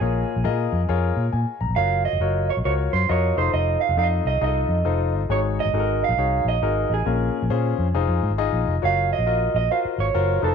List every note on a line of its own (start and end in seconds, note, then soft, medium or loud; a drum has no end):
0.00 0.23 A#1 medium
0.00 0.69 A#2 medium
0.00 0.36 F4 medium
0.00 1.13 G#4 medium
0.00 0.36 G#4 medium
0.00 0.36 A#4 medium
0.00 0.36 C#5 medium
0.36 0.46 A#1 medium
0.44 0.67 A#2 medium
0.44 0.80 F4 medium
0.44 0.80 G#4 medium
0.44 0.80 A#4 medium
0.44 0.80 D#5 medium
0.72 0.85 F2 medium
0.89 1.11 F2 medium
0.89 1.24 F4 medium
0.89 1.24 G#4 medium
0.89 1.24 A#4 medium
0.89 1.24 C#5 medium
1.16 1.29 A#2 medium
1.32 1.44 A#2 medium
1.32 1.59 G#5 medium
1.61 1.67 A#1 medium
1.61 2.03 A#5 medium
1.69 1.75 A#1 medium
1.76 2.05 F#1 medium
1.76 2.12 F4 medium
1.76 2.12 F#4 medium
1.76 2.12 A#4 medium
1.76 2.12 C#5 medium
1.76 2.05 F5 loud
2.05 2.50 D#5 medium
2.13 2.19 F#1 medium
2.20 2.49 F#1 medium
2.20 2.56 F4 medium
2.20 2.56 F#4 medium
2.20 2.56 A#4 medium
2.20 2.56 C#5 medium
2.50 2.55 C#5 medium
2.57 2.63 A#1 medium
2.65 2.87 C#2 medium
2.65 3.00 F4 medium
2.65 3.00 F#4 medium
2.65 3.00 A#4 medium
2.65 2.72 C5 medium
2.65 2.73 C#5 medium
2.71 3.03 C#5 medium
2.93 3.06 F#2 medium
2.93 3.10 C5 medium
3.09 3.31 F2 medium
3.09 3.37 F4 medium
3.09 3.37 F#4 medium
3.09 3.37 A#4 medium
3.09 3.38 C#5 medium
3.09 3.37 D#5 medium
3.37 3.50 F1 medium
3.37 3.88 D#4 medium
3.37 3.88 F4 medium
3.37 3.88 A4 medium
3.37 3.88 C5 medium
3.37 3.53 C5 medium
3.53 3.75 F1 medium
3.53 3.79 D#5 medium
3.81 3.96 F5 medium
3.89 3.95 F1 medium
3.97 4.19 F2 loud
3.97 4.32 D#4 medium
3.97 4.33 F4 medium
3.97 4.32 A4 medium
3.97 4.04 D5 medium
3.97 4.06 F5 loud
4.03 4.36 D#5 medium
4.25 4.38 C2 medium
4.25 4.43 D#5 medium
4.41 4.63 C2 medium
4.41 4.77 D#4 medium
4.41 4.77 F4 medium
4.41 4.48 G#4 medium
4.41 4.77 D#5 medium
4.41 5.11 D#5 medium
4.47 4.79 A4 medium
4.69 4.82 F2 medium
4.85 5.14 F1 medium
4.85 5.20 D#4 medium
4.85 5.20 F4 medium
4.85 5.20 A4 medium
4.85 5.21 C5 medium
5.14 5.27 G1 medium
5.29 5.58 G#1 loud
5.29 5.98 G#2 medium
5.29 5.65 D#4 medium
5.29 5.65 F#4 medium
5.29 5.65 G#4 medium
5.29 5.65 C#5 medium
5.29 5.39 C#5 loud
5.60 6.04 D#5 loud
5.65 5.72 G#1 medium
5.73 6.02 G#1 medium
5.73 6.09 D#4 medium
5.73 6.09 F#4 medium
5.73 6.09 G#4 medium
5.73 5.81 A4 medium
5.79 6.12 A#4 medium
6.04 6.48 F5 loud
6.09 6.16 A#1 medium
6.17 6.39 C2 medium
6.17 6.53 D#4 medium
6.17 6.53 F#4 medium
6.17 6.53 G#4 medium
6.17 6.53 C#5 medium
6.45 6.58 A#1 medium
6.45 6.88 D#5 loud
6.62 6.84 G#1 loud
6.62 6.97 D#4 medium
6.62 6.98 F#4 medium
6.62 6.98 G#4 medium
6.62 6.98 A#4 medium
6.90 7.03 A1 medium
6.94 8.20 G#4 medium
7.05 7.28 A#1 loud
7.05 7.74 A#2 medium
7.05 7.41 C#4 medium
7.05 7.41 F4 medium
7.05 7.41 G#4 medium
7.05 7.41 A#4 medium
7.42 7.49 A#1 medium
7.50 7.72 A#2 loud
7.50 7.85 C#4 medium
7.50 7.85 F4 medium
7.50 7.86 G#4 medium
7.50 7.86 C5 medium
7.79 7.91 F2 medium
7.94 8.06 F1 medium
7.94 8.30 D#4 medium
7.94 8.30 F4 medium
7.94 8.30 G#4 medium
7.94 8.30 C5 medium
8.08 8.19 F2 medium
8.23 8.29 G#2 medium
8.30 8.48 G#1 medium
8.38 8.74 D#4 medium
8.38 8.74 F4 medium
8.38 8.74 G#4 medium
8.38 8.74 D#5 medium
8.53 8.64 A#1 medium
8.67 8.80 F1 medium
8.82 9.12 F#1 loud
8.82 9.18 F4 medium
8.82 9.17 F#4 medium
8.82 9.18 A#4 medium
8.82 9.18 C#5 medium
8.82 9.12 F5 loud
9.13 9.53 D#5 loud
9.19 9.47 A#1 medium
9.26 9.62 F4 medium
9.26 9.62 F#4 medium
9.26 9.62 A#4 medium
9.26 9.62 D#5 medium
9.54 9.67 A#1 medium
9.54 9.71 D#5 loud
9.71 10.06 F4 medium
9.71 10.06 F#4 medium
9.71 10.06 A#4 medium
9.71 10.06 C5 medium
9.71 9.79 F5 loud
9.85 muted fingered electric bass stroke soft
9.98 10.11 G#1 medium
9.98 10.41 C#5 loud
10.14 10.37 F#1 medium
10.14 10.41 F4 medium
10.14 10.43 F#4 medium
10.14 10.43 A#4 medium
10.14 10.43 C5 medium
10.42 10.55 F1 medium
10.42 10.55 D#4 medium
10.42 10.55 F4 medium
10.42 10.55 A4 medium
10.42 10.47 B4 medium
10.48 10.55 C5 medium